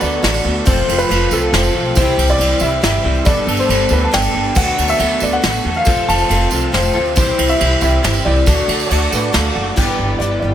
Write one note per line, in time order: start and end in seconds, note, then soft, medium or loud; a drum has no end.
0.00 0.16 D2 medium
0.00 0.22 D3 medium
0.00 0.21 F#3 medium
0.00 0.23 A3 medium
0.00 0.22 B3 medium
0.00 0.24 B3 medium
0.00 0.66 D4 medium
0.00 0.22 F#4 medium
0.00 0.64 F#4 medium
0.00 0.66 F#4 medium
0.00 0.24 F#4 medium
0.00 0.24 A4 medium
0.00 0.65 A4 medium
0.00 0.64 B4 medium
0.00 0.66 B4 medium
0.00 0.65 D5 medium
0.00 0.22 D5 medium
0.00 tambourine medium
0.12 tambourine soft
0.23 0.38 A1 loud
0.23 0.46 D3 medium
0.23 0.44 F#3 medium
0.23 0.46 A3 medium
0.23 0.45 B3 medium
0.23 0.44 F#4 medium
0.23 0.42 A4 medium
0.23 0.68 D5 medium
0.23 snare medium
0.23 ride medium
0.34 tambourine medium
0.44 0.59 D2 medium
0.44 0.66 D3 medium
0.44 0.66 A3 medium
0.44 0.66 B3 medium
0.44 0.65 F#4 medium
0.44 0.66 A4 medium
0.56 tambourine soft
0.65 0.82 F1 medium
0.65 1.10 F2 medium
0.65 1.10 C3 medium
0.65 0.90 F3 medium
0.65 0.89 A3 loud
0.65 1.95 C4 medium
0.65 1.94 C4 medium
0.65 0.90 C4 medium
0.65 1.93 F4 medium
0.65 1.95 F4 medium
0.65 1.95 A4 medium
0.65 1.94 A4 medium
0.65 1.10 A4 medium
0.65 0.97 C5 medium
0.65 kick loud
0.65 ride medium
0.65 tambourine medium
0.69 0.88 F4 loud
0.88 1.03 F1 medium
0.88 1.09 F3 medium
0.88 1.10 A3 medium
0.88 1.10 C4 medium
0.88 1.11 F4 medium
0.88 ride medium
0.98 1.32 B4 loud
0.98 tambourine medium
1.10 1.25 F1 medium
1.10 1.32 F3 medium
1.10 1.31 A3 medium
1.10 1.31 C4 medium
1.10 1.30 F4 medium
1.10 1.54 A4 medium
1.10 ride medium
1.31 1.46 C2 medium
1.31 1.75 F2 medium
1.31 1.75 C3 medium
1.31 1.52 F3 medium
1.31 1.53 A3 medium
1.31 1.53 C4 medium
1.31 1.54 F4 medium
1.31 1.54 A4 medium
1.31 tambourine loud
1.41 tambourine soft
1.53 1.67 F1 loud
1.53 1.75 F3 medium
1.53 1.74 A3 medium
1.53 1.74 C4 medium
1.53 1.73 F4 medium
1.53 1.97 A4 medium
1.53 1.95 C5 medium
1.53 snare medium
1.53 ride medium
1.63 tambourine medium
1.75 1.89 B1 loud
1.75 1.96 F2 medium
1.75 1.95 C3 medium
1.75 1.96 F3 medium
1.75 1.95 A3 medium
1.75 1.95 C4 medium
1.75 1.95 F4 loud
1.85 tambourine soft
1.95 2.11 C2 loud
1.95 2.39 C3 loud
1.95 2.38 E3 medium
1.95 2.20 G3 medium
1.95 3.25 C4 medium
1.95 2.18 C4 medium
1.95 3.02 E4 medium
1.95 3.25 E4 medium
1.95 2.17 E4 loud
1.95 3.02 G4 medium
1.95 3.25 G4 medium
1.95 2.40 G4 medium
1.95 3.25 C5 medium
1.95 2.27 C5 loud
1.95 3.03 C5 medium
1.95 kick loud
1.95 ride medium
1.95 tambourine loud
2.18 2.32 C2 loud
2.18 2.39 G3 medium
2.18 2.39 C4 medium
2.18 2.40 E4 medium
2.18 ride medium
2.28 2.60 D5 loud
2.28 tambourine medium
2.39 2.54 C2 medium
2.39 2.61 E3 medium
2.39 2.61 G3 medium
2.39 2.60 C4 medium
2.39 2.60 E4 medium
2.39 2.83 G4 medium
2.39 ride medium
2.60 2.76 C2 medium
2.60 3.05 C3 medium
2.60 2.81 E3 medium
2.60 2.82 G3 medium
2.60 2.82 C4 medium
2.60 2.83 E4 loud
2.60 2.82 E5 medium
2.60 tambourine loud
2.82 2.98 G1 loud
2.82 3.05 E3 medium
2.82 3.04 G3 medium
2.82 3.03 C4 medium
2.82 3.03 E4 medium
2.82 3.26 G4 medium
2.82 3.24 E5 loud
2.82 snare medium
2.82 ride medium
3.04 3.19 C2 medium
3.04 3.26 C3 medium
3.04 3.25 E3 medium
3.04 3.25 G3 medium
3.04 3.25 C4 medium
3.04 3.26 E4 soft
3.04 3.25 E4 medium
3.04 3.23 G4 soft
3.04 3.27 D5 medium
3.15 tambourine soft
3.24 3.41 G1 medium
3.24 3.67 G3 medium
3.24 3.49 B3 medium
3.24 4.55 D4 medium
3.24 3.48 D4 loud
3.24 4.53 G4 medium
3.24 4.55 G4 medium
3.24 4.53 A4 medium
3.24 4.54 A4 medium
3.24 3.60 D5 loud
3.24 4.55 D5 medium
3.24 4.54 B5 medium
3.24 kick loud
3.24 ride medium
3.24 tambourine loud
3.28 3.47 A4 loud
3.47 3.62 G1 medium
3.47 3.68 B3 medium
3.47 3.69 D4 medium
3.47 3.70 A4 medium
3.47 ride medium
3.47 tambourine soft
3.57 3.89 C5 loud
3.57 tambourine medium
3.69 3.84 G1 medium
3.69 3.91 G3 medium
3.69 3.90 B3 medium
3.69 3.90 D4 medium
3.69 3.90 A4 medium
3.69 ride medium
3.89 4.05 D2 loud
3.89 4.11 G3 medium
3.89 4.11 B3 medium
3.89 4.12 D4 medium
3.89 4.14 A4 medium
3.89 4.07 B4 medium
3.89 tambourine loud
4.05 4.12 A5 medium
4.12 4.28 G1 medium
4.12 4.35 G3 medium
4.12 4.35 B3 medium
4.12 4.34 D4 medium
4.12 4.34 A4 medium
4.12 4.58 G5 loud
4.12 snare medium
4.12 ride medium
4.22 tambourine medium
4.35 4.49 G1 medium
4.35 4.56 G3 medium
4.35 4.56 B3 medium
4.35 4.55 D4 medium
4.35 4.58 A4 medium
4.44 tambourine soft
4.55 4.71 D2 medium
4.55 4.97 D3 medium
4.55 4.97 F#3 medium
4.55 4.79 A3 medium
4.55 4.77 B3 medium
4.55 5.85 D4 medium
4.55 5.83 F#4 medium
4.55 5.85 F#4 medium
4.55 4.76 F#4 medium
4.55 5.85 A4 medium
4.55 5.00 A4 medium
4.55 5.85 B4 medium
4.55 5.84 B4 medium
4.55 5.84 D5 medium
4.55 4.90 F#5 loud
4.55 kick loud
4.55 tambourine loud
4.55 crash loud
4.78 4.93 D2 medium
4.78 4.98 A3 medium
4.78 4.99 B3 medium
4.78 4.99 F#4 medium
4.78 ride medium
4.88 5.23 E5 loud
4.88 tambourine medium
4.98 5.14 D2 loud
4.98 5.22 D3 medium
4.98 5.41 F#3 medium
4.98 5.21 A3 medium
4.98 5.21 B3 medium
4.98 5.19 F#4 medium
4.98 5.42 A4 medium
4.98 ride medium
5.20 5.36 D2 medium
5.20 5.41 D3 medium
5.20 5.42 A3 medium
5.20 5.43 B3 medium
5.20 5.44 F#4 medium
5.20 5.33 D5 medium
5.20 tambourine loud
5.32 5.73 F#5 loud
5.32 tambourine soft
5.42 5.58 A1 loud
5.42 5.65 D3 medium
5.42 5.85 F#3 medium
5.42 5.65 A3 medium
5.42 5.64 B3 medium
5.42 5.63 F#4 loud
5.42 5.85 A4 medium
5.42 snare medium
5.42 ride medium
5.53 tambourine medium
5.65 5.79 E2 medium
5.65 5.86 D3 medium
5.65 5.86 A3 medium
5.65 5.85 B3 medium
5.65 5.85 F#4 loud
5.74 6.09 F5 loud
5.74 tambourine soft
5.85 6.01 F1 medium
5.85 6.30 F2 medium
5.85 6.30 C3 medium
5.85 6.09 F3 medium
5.85 6.09 A3 medium
5.85 7.15 C4 medium
5.85 6.09 C4 loud
5.85 7.13 F4 medium
5.85 7.15 F4 medium
5.85 6.07 F4 medium
5.85 7.14 A4 medium
5.85 7.15 A4 medium
5.85 6.30 A4 medium
5.85 7.15 C5 medium
5.85 7.14 C5 medium
5.85 kick loud
5.85 ride medium
5.85 tambourine loud
6.08 6.23 F1 medium
6.08 6.28 F3 medium
6.08 6.29 A3 medium
6.08 6.30 C4 medium
6.08 6.30 F4 medium
6.08 6.75 A5 loud
6.08 ride medium
6.18 tambourine medium
6.29 6.45 F1 loud
6.29 6.51 F3 medium
6.29 6.51 A3 medium
6.29 6.50 C4 medium
6.29 6.50 F4 medium
6.29 6.73 A4 medium
6.29 ride medium
6.51 6.66 C2 medium
6.51 6.95 F2 medium
6.51 6.94 C3 medium
6.51 6.72 F3 medium
6.51 6.73 A3 medium
6.51 6.73 C4 medium
6.51 6.73 F4 medium
6.51 tambourine loud
6.61 tambourine soft
6.73 6.88 F1 loud
6.73 6.94 F3 medium
6.73 6.94 A3 medium
6.73 6.93 C4 medium
6.73 6.93 F4 medium
6.73 6.92 A4 medium
6.73 7.14 C5 medium
6.73 snare medium
6.73 ride medium
6.82 tambourine medium
6.93 7.17 D2 medium
6.93 7.16 F2 medium
6.93 7.14 C3 medium
6.93 7.16 F3 medium
6.93 7.15 A3 medium
6.93 7.15 C4 medium
6.93 7.15 F4 loud
6.93 7.16 A4 medium
7.05 tambourine soft
7.16 7.31 C2 medium
7.16 7.59 C3 medium
7.16 7.58 E3 medium
7.16 7.39 G3 loud
7.16 7.38 C4 loud
7.16 8.46 C4 medium
7.16 8.44 E4 medium
7.16 7.37 E4 loud
7.16 8.46 E4 medium
7.16 8.44 G4 medium
7.16 8.46 G4 medium
7.16 7.60 G4 medium
7.16 7.47 C5 loud
7.16 8.46 C5 medium
7.16 8.45 C5 medium
7.16 kick loud
7.16 ride medium
7.16 tambourine loud
7.38 7.53 C2 medium
7.38 7.59 G3 medium
7.38 7.60 C4 medium
7.38 7.60 E4 medium
7.38 ride medium
7.48 7.79 E5 loud
7.48 tambourine medium
7.59 7.75 C2 medium
7.59 7.82 E3 medium
7.59 7.81 G3 medium
7.59 7.81 C4 medium
7.59 7.80 E4 medium
7.59 8.04 G4 medium
7.59 ride medium
7.81 7.96 C2 medium
7.81 8.25 C3 medium
7.81 8.02 E3 medium
7.81 8.03 G3 medium
7.81 8.03 C4 medium
7.81 8.04 E4 medium
7.81 8.22 E5 medium
7.81 tambourine loud
7.92 tambourine soft
8.03 8.19 G1 loud
8.03 8.25 E3 medium
8.03 8.25 G3 medium
8.03 8.24 C4 medium
8.03 8.24 E4 medium
8.03 8.48 G4 medium
8.03 snare medium
8.03 ride medium
8.13 tambourine medium
8.25 8.40 C2 loud
8.25 8.46 C3 medium
8.25 8.46 E3 medium
8.25 8.46 G3 medium
8.25 8.46 C4 loud
8.25 8.45 E4 medium
8.25 9.30 D5 medium
8.36 tambourine soft
8.46 8.62 D2 medium
8.46 8.89 D3 medium
8.46 8.89 F#3 medium
8.46 8.69 A3 medium
8.46 9.76 D4 medium
8.46 8.68 D4 medium
8.46 9.74 F#4 medium
8.46 9.76 F#4 medium
8.46 8.66 F#4 loud
8.46 9.76 A4 medium
8.46 9.75 A4 medium
8.46 9.75 D5 medium
8.46 9.76 D5 medium
8.46 kick loud
8.46 ride medium
8.46 tambourine loud
8.68 8.83 D2 medium
8.68 8.89 A3 medium
8.68 8.90 D4 medium
8.68 8.91 F#4 medium
8.68 ride medium
8.79 tambourine medium
8.87 9.12 D3 medium
8.87 9.12 F#3 medium
8.87 9.12 A3 medium
8.87 8.89 C#5 medium
8.91 9.05 D2 medium
8.91 9.11 D4 medium
8.91 9.10 F#4 medium
8.91 9.12 D5 medium
8.91 ride medium
9.11 9.27 A2 medium
9.11 9.31 D3 medium
9.11 9.32 A3 medium
9.11 9.33 D4 medium
9.11 9.34 F#4 loud
9.11 9.34 B4 medium
9.11 tambourine loud
9.23 tambourine soft
9.32 9.49 D2 loud
9.32 9.56 D3 medium
9.32 9.76 F#3 medium
9.32 9.56 A3 medium
9.32 9.55 D4 medium
9.32 9.54 F#4 medium
9.32 9.66 A4 medium
9.32 9.64 F5 medium
9.32 snare medium
9.32 ride medium
9.55 9.70 F#1 medium
9.55 9.75 D3 medium
9.55 9.77 A3 medium
9.55 9.76 D4 medium
9.55 9.76 F#4 medium
9.75 9.98 G1 medium
9.75 10.54 G2 medium
9.75 10.54 D3 medium
9.75 10.54 E3 medium
9.75 10.54 G3 medium
9.75 10.54 B3 medium
9.75 10.20 D4 medium
9.75 10.54 E4 medium
9.75 10.54 G4 medium
9.75 10.54 B4 medium
9.75 10.20 B4 medium
9.75 10.54 B4 medium
9.75 10.54 D5 medium
9.75 kick medium
9.75 crash medium
9.99 10.19 G1 medium
10.19 10.41 G1 medium
10.19 10.42 E3 medium
10.19 10.42 D4 medium
10.19 10.43 G4 medium
10.19 10.41 B4 medium
10.19 10.39 D5 medium
10.19 closed hi-hat medium
10.40 10.54 G1 medium
10.40 10.54 G4 soft
10.40 10.54 B4 soft
10.40 10.54 D5 medium
10.45 10.54 D4 soft